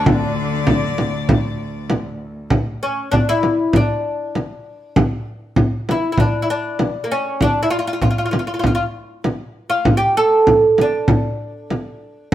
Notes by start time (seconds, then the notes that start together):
Already playing: D2 D3 D4
0.05 D5, frame drum
0.67 frame drum
0.98 frame drum
1.29 frame drum
1.90 frame drum
2.50 frame drum
2.83 C#4
3.12 D4, frame drum
3.29 E4
3.43 frame drum
3.73 D4, frame drum
4.35 frame drum
4.96 frame drum
5.56 frame drum
5.89 E4, frame drum
6.12 E4
6.17 D4, frame drum
6.42 E4
6.50 D4
6.79 frame drum
7.04 A#3
7.12 C#4
7.41 D4, frame drum
7.63 E4
7.70 F4
7.79 F4
7.87 F4
7.93 F4
8.02 F4, frame drum
8.11 F4
8.18 F4
8.26 F4
8.31 F4, frame drum
8.39 F4
8.47 F4
8.54 F4
8.59 F4
8.64 F4, frame drum
8.75 F4
9.24 frame drum
9.70 F4
9.85 frame drum
9.97 G4
10.17 A4
10.47 frame drum
10.78 D4, frame drum
11.08 frame drum
11.70 frame drum